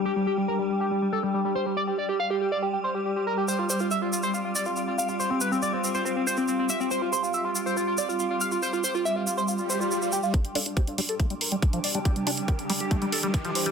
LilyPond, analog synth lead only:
\new Staff \with { instrumentName = "Analog synth lead" } { \time 4/4 \key c \dorian \tempo 4 = 140 g'16 g16 g'16 g16 bes'16 g16 g16 g'16 g16 g16 a'16 g16 g16 g16 c''16 g16 | d''16 g'16 d''16 g'16 f''16 g'16 g'16 d''16 g'16 g'16 c''16 g'16 g'16 g'16 bes'16 g'16 | c''16 f'16 c''16 f'16 e''16 f'16 f'16 c''16 f'16 f'16 d''16 f'16 f'16 f'16 f''16 f'16 | c''16 c'16 b'16 c'16 d''16 c'16 c'16 c''16 c'16 c'16 c''16 c'16 c'16 c'16 e''16 c'16 |
c''16 f'16 c''16 f'16 e''16 f'16 f'16 c''16 f'16 f'16 d''16 f'16 f'16 f'16 f''16 f'16 | c''16 f'16 c''16 f'16 e''16 f'16 f'16 c''16 f'16 f'16 c''16 f'16 f'16 f'16 g'16 f'16 | a'16 d'16 a'16 d'16 c''16 d'16 d'16 a'16 d'16 d'16 bes'16 d'16 d'16 d'16 d''16 d'16 | g'16 g16 g'16 g16 bes'16 g16 g16 g'16 g16 g16 a'16 g16 g16 g16 c''16 g16 | }